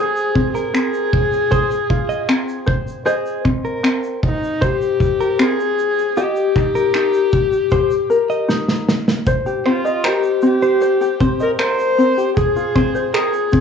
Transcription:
Already playing: G#4 C5
0.16 shaker
0.35 C4, kick
0.53 G#4 A#4, shaker
0.74 C4, finger snap, shaker
0.93 shaker
1.13 kick
1.33 shaker
1.51 G#4 C5, kick, shaker
1.71 shaker
1.90 F4, kick
2.09 D#5, shaker
2.29 C4, finger snap, shaker
2.49 shaker
2.67 C5, kick
2.88 shaker
3.06 G#4 C5 D#5, shaker
3.26 shaker
3.45 C4, finger snap, kick, shaker
3.65 A#4, shaker
3.84 C4, finger snap, shaker
4.03 shaker
4.23 D#4, kick
4.43 shaker
4.61 G4 C5, kick, shaker
4.82 shaker
5.00 kick, shaker
5.20 A#4, shaker
5.39 C4 G#4, finger snap, shaker
5.59 shaker
5.79 shaker
5.98 shaker
6.17 G4 D#5, shaker
6.36 shaker
6.55 D#4, finger snap, kick, shaker
6.75 A#4, shaker
6.94 D#4, finger snap, shaker
7.13 shaker
7.32 kick, shaker
7.52 shaker
7.71 G4 C5, kick, shaker
7.91 shaker
8.10 A#4, shaker
8.30 D#5, shaker
8.49 D#4, snare
8.68 snare
8.88 snare
9.08 snare
9.27 C5, kick, shaker
9.46 G4, shaker
9.66 C4 F4 C5, finger snap
9.85 D#5, shaker
10.04 G4 A#4 C5, finger snap, shaker
10.23 shaker
10.42 C4 G4, shaker
10.62 G4 C5, shaker
10.81 C5, shaker
11.01 G4, shaker
11.20 C4 C5, kick, shaker
11.40 A#4 D#5, shaker
11.59 A#4 C5, finger snap, shaker
11.79 shaker
11.98 C4, shaker
12.17 G4, shaker
12.37 G#4, kick, shaker
12.56 F4, shaker
12.75 C4 C5, finger snap, kick, shaker
12.95 C5, shaker
13.14 G#4 A#4, finger snap, shaker
13.33 shaker
13.52 C4, kick, shaker

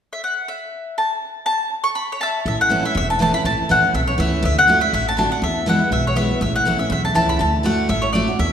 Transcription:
0.13 E5
0.24 F#5
0.48 E5
0.98 A5
1.46 A5
1.84 C#6
1.95 B5
2.12 C#5
2.21 E5 A5
2.46 A1 A2 E5
2.61 F#5
2.69 E3 A3 C#4 E4
2.83 C#4 E4 E5
2.95 E1 E2 E5
3.10 A5
3.19 E3 A3 C#4 E4 A5
3.33 C#4 E4 B5
3.45 A1 A2 A5
3.69 A1 E3 A3 C#4 E4 F#5
3.82 C#4 E4
3.94 B1 E2 E5
4.07 C#5
4.18 C#2 E3 A3 C#4 E4 E5
4.43 D2 D3 E5
4.59 F#5
4.67 D3 A3 D4 F#4
4.81 D4 F#4 E5
4.93 A1 A2 E5
5.09 A5
5.17 D3 A3 D4 F#4 A5
5.29 D4 F#4 F#5
5.42 E2 E5
5.66 E3 G#3 B3 E4 F#5
5.79 B3 E4
5.91 B1 B2 E5
6.07 C#5
6.15 E3 G#3 B3 E4 E5
6.28 B3 E4
6.41 A1 A2 E5
6.56 F#5
6.65 E3 A3 C#4 E4
6.78 C#4 E4 E5
6.90 B1 E2 E5
7.05 A5
7.14 C#2 E3 A3 C#4 E4 A5
7.29 B5
7.39 D2 D3 A5
7.63 D3 A3 D4 F#4 F#5
7.89 A1 A2 E5
8.02 C#5
8.13 D3 A3 D4 F#4 D5
8.28 D4 F#4
8.39 E2 E5

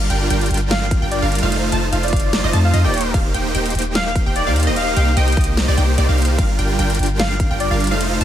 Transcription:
0.10 G1 G3 D4 F4 A#4 G5, closed hi-hat
0.30 G1 G3 D4 F4 A#4 G5, closed hi-hat
0.41 closed hi-hat
0.46 closed hi-hat
0.51 G1 G3 D4 F4 A#4 G5, closed hi-hat
0.54 closed hi-hat
0.57 closed hi-hat
0.71 F5, snare, closed hi-hat, crash
0.82 F5
0.91 kick, closed hi-hat
1.02 G1 G3 D4 F4 A#4 G5
1.11 D5, closed hi-hat
1.22 G1 G3 D4 F4 A#4 F5
1.32 closed hi-hat
1.35 closed hi-hat
1.38 closed hi-hat
1.43 F1 A3 D#4 F4 C5 F5
1.52 closed hi-hat, crash
1.72 F1 A3 D#4 F4 C5 A5, closed hi-hat
1.93 F1 A3 D#4 F4 C5 F5, closed hi-hat
2.03 D5, closed hi-hat
2.08 closed hi-hat
2.13 F1 A3 D#4 F4 C5 F5, kick, closed hi-hat
2.16 closed hi-hat
2.20 closed hi-hat
2.33 snare, closed hi-hat, crash
2.44 F1 A3 D#4 F4 C5 D#5
2.53 F2 A3 D#4 F4 C5 A5, closed hi-hat
2.64 F5
2.74 F2 A3 D#4 F4 C5 D#5, closed hi-hat
2.85 D#1 A#3 D#4 G4 C5 D5 G5
2.94 closed hi-hat
2.98 closed hi-hat
3.01 closed hi-hat
3.14 D#1 A#3 D#4 G4 C5 F5, kick, closed hi-hat, crash
3.34 D#1 A#3 D#4 G4 C5 G5, closed hi-hat
3.55 D#1 A#3 D#4 G4 C5 G5, closed hi-hat
3.66 closed hi-hat
3.70 closed hi-hat
3.75 D#1 A#3 D#4 G4 C5 G5, closed hi-hat
3.79 closed hi-hat
3.82 closed hi-hat
3.95 F5, snare, closed hi-hat, crash
4.06 F5
4.15 kick, closed hi-hat
4.26 D#1 A#3 D#4 G4 C5 G5
4.36 D5, closed hi-hat
4.47 D#2 A#3 D#4 G4 C5 F5
4.56 closed hi-hat
4.60 closed hi-hat
4.63 closed hi-hat
4.67 D#1 A#3 D#4 G4 C5 D#5
4.76 F5, closed hi-hat, crash
4.97 C2 A#3 D#4 G4 C5 G5, closed hi-hat
5.17 C2 A#3 D#4 G4 C5 D#5 G5, closed hi-hat
5.28 G5, closed hi-hat
5.32 closed hi-hat
5.37 C2 A#3 D#4 G4 C5 D#5, kick, closed hi-hat
5.41 closed hi-hat
5.44 closed hi-hat
5.57 snare, closed hi-hat, crash
5.68 C2 A#3 D#4 G4 C5 D5
5.78 C2 A#3 D#4 G4 C5 G5, closed hi-hat
5.98 C2 A#3 D#4 G4 C5 D5, closed hi-hat
6.09 C2 A#3 D#4 G4 C5 F5
6.18 closed hi-hat, open hi-hat
6.25 closed hi-hat
6.38 G1 G3 D4 F4 A#4 F5, kick, closed hi-hat, crash
6.59 G1 G3 D4 F4 A#4 G5, closed hi-hat
6.79 G1 G3 D4 F4 A#4 G5, closed hi-hat
6.90 closed hi-hat
6.95 closed hi-hat
6.99 G1 G3 D4 F4 A#4 G5, closed hi-hat
7.03 closed hi-hat
7.06 closed hi-hat
7.20 F5, snare, closed hi-hat, crash
7.30 F5
7.40 kick, closed hi-hat
7.51 G1 G3 D4 F4 A#4 G5
7.60 D5, closed hi-hat
7.71 G1 G3 D4 F4 A#4 F5
7.80 closed hi-hat
7.84 closed hi-hat
7.87 closed hi-hat
7.91 F1 A3 D#4 F4 C5 F5
8.01 closed hi-hat, crash
8.21 F1 A3 D#4 F4 C5 A5, closed hi-hat

